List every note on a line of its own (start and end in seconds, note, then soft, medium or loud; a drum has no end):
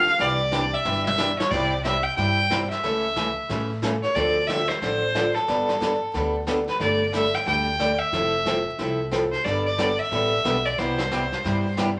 0.00 0.23 F5 loud
0.06 snare soft
0.18 0.72 C2 medium
0.18 0.40 C3 medium
0.18 0.40 E3 medium
0.18 0.40 D4 medium
0.18 0.40 G4 medium
0.18 0.75 D5 medium
0.18 brush sweep medium
0.18 kick soft
0.18 snare soft
0.51 0.63 C3 medium
0.51 0.63 E3 medium
0.51 0.70 G3 medium
0.51 0.70 C4 medium
0.51 0.71 D4 medium
0.51 0.63 D4 medium
0.51 0.71 E4 medium
0.51 0.64 G4 loud
0.51 0.71 G4 medium
0.51 kick soft
0.51 snare medium
0.51 hi-hat pedal medium
0.74 1.05 E5 medium
0.85 1.38 G1 medium
0.85 1.06 C3 medium
0.85 1.06 E3 medium
0.85 1.06 D4 medium
0.85 1.07 G4 medium
0.85 mid tom medium
1.06 1.36 E5 medium
1.06 mid tom medium
1.18 1.29 C3 medium
1.18 1.29 E3 medium
1.18 1.30 D4 medium
1.18 1.30 G4 medium
1.18 snare medium
1.18 hi-hat pedal medium
1.39 1.52 C#5 medium
1.39 snare medium
1.51 2.04 C2 medium
1.51 1.72 C3 medium
1.51 1.72 G3 medium
1.51 1.72 C4 medium
1.51 1.73 E4 medium
1.51 1.73 G4 medium
1.51 1.84 D5 medium
1.51 brush sweep soft
1.51 kick medium
1.51 snare soft
1.51 crash medium
1.84 1.95 C3 medium
1.84 1.95 G3 medium
1.84 1.96 C4 medium
1.84 1.96 E4 medium
1.84 1.96 G4 medium
1.84 2.05 E5 medium
1.84 kick soft
1.84 snare medium
1.84 hi-hat pedal soft
2.03 2.16 G5 medium
2.16 2.70 G2 medium
2.16 2.38 C3 medium
2.16 2.38 G3 medium
2.16 2.38 C4 medium
2.16 2.38 E4 medium
2.16 2.39 G4 medium
2.16 2.66 G5 medium
2.16 brush sweep soft
2.16 kick soft
2.16 snare soft
2.50 2.61 C3 medium
2.50 2.61 G3 medium
2.50 2.62 C4 medium
2.50 2.62 E4 medium
2.50 2.62 G4 medium
2.50 kick soft
2.50 snare medium
2.50 hi-hat pedal medium
2.70 3.66 E5 medium
2.70 snare soft
2.83 3.36 C#2 medium
2.83 3.04 C#3 medium
2.83 3.04 E3 medium
2.83 3.04 A3 medium
2.83 3.04 C#4 medium
2.83 3.04 A4 medium
2.83 brush sweep soft
2.83 kick soft
2.83 snare soft
3.16 3.27 C#3 medium
3.16 3.27 E3 medium
3.16 3.28 A3 medium
3.16 3.28 C#4 medium
3.16 3.28 A4 medium
3.16 kick soft
3.16 snare medium
3.16 hi-hat pedal medium
3.49 4.02 A2 medium
3.49 3.70 C#3 medium
3.49 3.70 E3 medium
3.49 3.70 A3 medium
3.49 3.70 C#4 soft
3.49 3.71 A4 medium
3.49 brush sweep medium
3.49 kick soft
3.49 snare soft
3.82 3.93 C#3 medium
3.82 3.93 E3 medium
3.82 3.94 A3 medium
3.82 3.94 C#4 medium
3.82 3.94 A4 medium
3.82 kick soft
3.82 snare medium
3.82 hi-hat pedal medium
4.03 4.16 C#5 medium
4.03 snare soft
4.15 4.68 D2 loud
4.15 4.36 D3 medium
4.15 4.36 F3 medium
4.15 4.36 C4 medium
4.15 4.36 D4 medium
4.15 4.36 A4 medium
4.15 4.49 D5 medium
4.15 brush sweep soft
4.15 kick soft
4.15 snare soft
4.47 4.60 D3 medium
4.47 4.60 F3 medium
4.47 4.60 C4 medium
4.47 4.60 D4 medium
4.47 4.60 A4 medium
4.47 4.70 E5 loud
4.47 kick soft
4.47 snare medium
4.47 hi-hat pedal medium
4.68 4.79 C5 medium
4.68 snare soft
4.80 5.35 A1 medium
4.80 5.02 D3 medium
4.80 5.02 F3 medium
4.80 5.03 C4 medium
4.80 5.03 D4 medium
4.80 5.03 A4 medium
4.80 5.36 C5 loud
4.80 brush sweep medium
4.80 kick soft
4.80 snare soft
5.15 5.26 D3 medium
5.15 5.26 F3 medium
5.15 5.26 C4 medium
5.15 5.26 D4 medium
5.15 5.26 A4 medium
5.15 kick soft
5.15 snare medium
5.15 hi-hat pedal medium
5.34 6.34 A4 medium
5.34 snare soft
5.48 6.01 G1 medium
5.48 5.68 G3 medium
5.48 5.69 B3 medium
5.48 5.69 D4 medium
5.48 5.69 A4 medium
5.48 brush sweep soft
5.48 kick soft
5.48 snare soft
5.69 snare medium
5.80 5.91 G3 medium
5.80 5.92 B3 medium
5.80 5.92 D4 medium
5.80 5.92 A4 medium
5.80 kick soft
5.80 snare medium
5.80 hi-hat pedal medium
6.13 6.67 D2 medium
6.13 6.34 G3 medium
6.13 6.35 B3 medium
6.13 6.35 D4 medium
6.13 6.35 A4 medium
6.13 brush sweep soft
6.13 kick soft
6.13 snare soft
6.47 6.58 G3 medium
6.47 6.58 B3 medium
6.47 6.58 D4 medium
6.47 6.58 A4 medium
6.47 kick soft
6.47 snare medium
6.47 hi-hat pedal medium
6.68 6.80 B4 medium
6.68 snare soft
6.80 7.33 G1 medium
6.80 7.01 G3 medium
6.80 7.01 A3 medium
6.80 7.01 D4 medium
6.80 7.01 A4 medium
6.80 7.12 D5 medium
6.80 brush sweep soft
6.80 kick soft
6.80 snare soft
7.13 7.24 G3 medium
7.13 7.24 A3 medium
7.13 7.24 D4 medium
7.13 7.25 A4 medium
7.13 7.36 E5 medium
7.13 kick soft
7.13 snare medium
7.13 hi-hat pedal medium
7.33 7.47 G5 medium
7.33 snare soft
7.46 7.99 D2 medium
7.46 7.67 G3 medium
7.46 7.67 A3 medium
7.46 7.67 D4 medium
7.46 7.68 A4 medium
7.46 8.00 G5 loud
7.46 brush sweep soft
7.46 kick soft
7.46 snare soft
7.79 7.90 G3 medium
7.79 7.90 A3 medium
7.79 7.91 D4 medium
7.79 7.91 A4 medium
7.79 kick soft
7.79 snare medium
7.79 hi-hat pedal medium
7.99 8.99 E5 loud
8.12 8.66 F1 medium
8.12 8.33 F3 medium
8.12 8.34 C4 medium
8.12 8.34 E4 medium
8.12 8.34 A4 medium
8.12 brush sweep soft
8.12 kick soft
8.12 snare soft
8.45 8.57 F3 medium
8.45 8.57 C4 medium
8.45 8.57 E4 medium
8.45 8.57 A4 medium
8.45 kick soft
8.45 snare medium
8.45 hi-hat pedal soft
8.79 9.32 C2 medium
8.79 9.00 F3 soft
8.79 9.00 C4 medium
8.79 9.00 E4 medium
8.79 9.00 A4 medium
8.79 brush sweep soft
8.79 kick soft
8.79 snare soft
9.11 9.23 F3 medium
9.11 9.23 C4 medium
9.11 9.23 E4 medium
9.11 9.23 A4 medium
9.11 kick soft
9.11 snare medium
9.11 hi-hat pedal medium
9.31 9.46 C5 medium
9.31 snare soft
9.44 9.98 G1 medium
9.44 9.66 G3 medium
9.44 9.66 B3 medium
9.44 9.66 D4 medium
9.44 9.66 A4 medium
9.44 9.65 D5 medium
9.44 brush sweep soft
9.44 kick soft
9.44 snare soft
9.66 10.01 D5 medium
9.78 9.89 G3 medium
9.78 9.89 B3 medium
9.78 9.90 D4 medium
9.78 9.90 A4 medium
9.78 kick soft
9.78 snare medium
9.78 hi-hat pedal medium
9.99 10.67 E5 medium
10.11 10.40 A1 medium
10.11 10.32 G3 medium
10.11 10.32 B3 medium
10.11 10.33 D4 medium
10.11 10.33 A4 medium
10.11 brush sweep soft
10.11 kick soft
10.11 snare soft
10.44 10.73 B1 medium
10.44 10.56 G3 medium
10.44 10.56 B3 medium
10.44 10.56 D4 medium
10.44 10.56 A4 medium
10.44 kick soft
10.44 snare medium
10.44 hi-hat pedal medium
10.65 10.80 D5 medium
10.65 snare soft
10.78 11.31 C2 medium
10.78 10.99 C3 medium
10.78 10.99 G3 medium
10.78 10.99 B3 medium
10.78 10.99 E4 medium
10.78 10.99 G4 medium
10.78 11.78 C5 medium
10.78 brush sweep soft
10.78 kick soft
10.78 snare soft
10.98 snare medium
11.11 11.22 C3 medium
11.11 11.23 G3 medium
11.11 11.23 B3 medium
11.11 11.23 E4 medium
11.11 11.23 G4 medium
11.11 kick soft
11.11 snare medium
11.11 hi-hat pedal medium
11.32 snare soft
11.44 11.97 G2 medium
11.44 11.65 C3 medium
11.44 11.65 G3 medium
11.44 11.65 B3 medium
11.44 11.65 E4 medium
11.44 11.65 G4 medium
11.44 brush sweep soft
11.44 kick soft
11.44 snare soft
11.77 11.88 C3 medium
11.77 11.88 G3 medium
11.77 11.89 B3 medium
11.77 11.89 E4 medium
11.77 11.89 G4 medium
11.77 kick soft
11.77 snare medium
11.77 hi-hat pedal medium